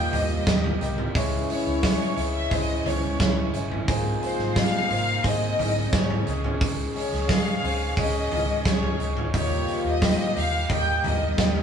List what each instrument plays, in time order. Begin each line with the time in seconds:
Already playing: tonewheel organ D#3 G3 A#3 G4, grand piano D#3 A#3 G4 A#4 D#5, french horn section F3 F4, overdriven electric guitar G3 A#3 D#4 G4, violin section G5
0.13 fingered electric bass D#2, grand piano A#3 G4 D#5, violin section D#5, floor tom, hi-hat pedal, open hi-hat
0.45 fingered electric bass D#2, overdriven electric guitar G3 A#3 D#4 G4, grand piano A#3 G4 D#5, kick, snare, hi-hat pedal, open hi-hat
0.64 floor tom
0.80 fingered electric bass C2, grand piano A#3 G4 D#5, overdriven electric guitar A#3 D#4 G4, hi-hat pedal, open hi-hat
0.98 floor tom
1.14 fingered electric bass C#2, overdriven electric guitar C#3 G#3 C#4 E4 G#4, tonewheel organ C#3 E3 G#3 C#4, grand piano C#3 G#3 E4 C#5, french horn section E3 E4, kick, hi-hat pedal, open hi-hat
1.49 grand piano G#3 E4 C#5, violin section C#5, hi-hat pedal, open hi-hat
1.66 fingered electric bass C#2
1.83 overdriven electric guitar G#3 C#4 E4 G#4, grand piano G#3 E4 C#5, kick, snare, hi-hat pedal, open hi-hat
2.16 fingered electric bass C#2, grand piano G#3 E4 C#5, overdriven electric guitar C#4 E4 G#4, hi-hat pedal, open hi-hat
2.34 violin section E5
2.50 fingered electric bass C#2, grand piano G#3 E4 C5, overdriven electric guitar G#3 C#4 E4 G#4, violin section D#5, kick, hi-hat pedal, open hi-hat
2.85 fingered electric bass C#2, grand piano G#3 E4 C#5, violin section C#5, floor tom, hi-hat pedal, open hi-hat
3.19 fingered electric bass C#2, french horn section E3 D#4, overdriven electric guitar G#3 C#4 E4 G#4, grand piano G#3 E4 C#5, kick, snare, hi-hat pedal, open hi-hat
3.53 fingered electric bass G1, grand piano G#3 E4 C#5, overdriven electric guitar C#4 E4 G#4, hi-hat pedal, open hi-hat
3.71 floor tom
3.87 fingered electric bass G#1, grand piano G#2 A#3 G#4 C5, tonewheel organ C3 A#3 D#4, french horn section F3 F4, overdriven electric guitar G#3 C4 D#4 A#4, kick, hi-hat pedal, open hi-hat
4.22 grand piano A#3 G#4 C5, violin section C5, hi-hat pedal, open hi-hat
4.39 fingered electric bass G#1, snare
4.55 overdriven electric guitar G#3 C4 D#4 A#4, grand piano A#3 G#4 D#5, violin section F5, kick, snare, hi-hat pedal, open hi-hat
4.89 fingered electric bass G#1, grand piano A#3 G#4 C5, overdriven electric guitar C4 D#4 A#4, hi-hat pedal, open hi-hat
5.23 fingered electric bass G#1, overdriven electric guitar G#3 C4 D#4 A#4, grand piano A#3 G#4 C5, violin section D#5, kick, hi-hat pedal, open hi-hat
5.58 fingered electric bass G#1, french horn section D#3 D#4, grand piano A#3 G#4 D#5, floor tom, hi-hat pedal, open hi-hat
5.92 fingered electric bass G#1, overdriven electric guitar G#3 C4 D#4 A#4, grand piano A#3 G#4 C5, violin section C#5, kick, snare, hi-hat pedal, open hi-hat
6.10 floor tom
6.25 fingered electric bass C#2, grand piano C#3 C#4 G#4 D#5, tonewheel organ D#3 C#4 G#4, french horn section G#3 G#4, overdriven electric guitar C#4 D#4 G#4, hi-hat pedal, open hi-hat
6.44 floor tom
6.60 overdriven electric guitar C#3 G#3 C#4 D#4 G#4, kick, hi-hat pedal, open hi-hat
6.95 grand piano C#4 G#4 D#5, violin section C#5, hi-hat pedal, open hi-hat
7.13 fingered electric bass C#2, snare
7.28 overdriven electric guitar G#3 C#4 D#4 G#4, grand piano C#4 G#4 D#5, violin section F5, kick, snare, hi-hat pedal, open hi-hat
7.62 fingered electric bass C#2, grand piano C#4 G#4 C5, overdriven electric guitar C#4 D#4 G#4, hi-hat pedal, open hi-hat
7.97 fingered electric bass C#2, overdriven electric guitar G#3 C#4 D#4 G#4, grand piano C#4 G#4 D#5, violin section D#5, kick, hi-hat pedal, open hi-hat
8.31 fingered electric bass C#2, grand piano C#4 G#4 D#5, floor tom, hi-hat pedal, open hi-hat
8.65 fingered electric bass C#2, overdriven electric guitar G#3 C#4 D#4 G#4, grand piano C#4 G#4 D#5, violin section C#5, kick, snare, hi-hat pedal, open hi-hat
8.83 floor tom
8.99 fingered electric bass C#2, grand piano C#4 G#4 D#5, overdriven electric guitar C#4 D#4 G#4, hi-hat pedal, open hi-hat
9.17 floor tom
9.33 fingered electric bass D#2, overdriven electric guitar D#3 G3 A#3 D#4 G4, grand piano D#3 A#3 G4 D#5, french horn section F3 F4, tonewheel organ G3 A#3 G4, violin section C#5, kick, hi-hat pedal, open hi-hat
9.67 grand piano A#3 G4 D#5, hi-hat pedal, open hi-hat
9.84 fingered electric bass D#2, violin section D#5
10.01 overdriven electric guitar G3 A#3 D#4 G4, grand piano A#3 G4 D#5, kick, snare, hi-hat pedal, open hi-hat
10.35 fingered electric bass D#2, grand piano A#3 G4 D#5, overdriven electric guitar A#3 D#4 G4, violin section F5, hi-hat pedal, open hi-hat
10.69 fingered electric bass D#2, overdriven electric guitar G3 A#3 D#4 G4, grand piano A#3 G4 D#5, violin section G5, kick, hi-hat pedal, open hi-hat
11.03 fingered electric bass D#2, french horn section D#3 D#4, grand piano A#3 G4 A#4, violin section D#5, floor tom, hi-hat pedal, open hi-hat
11.37 fingered electric bass D#2, overdriven electric guitar G3 A#3 D#4 G4, grand piano A#3 G4 D#5, kick, snare, hi-hat pedal, open hi-hat
11.56 floor tom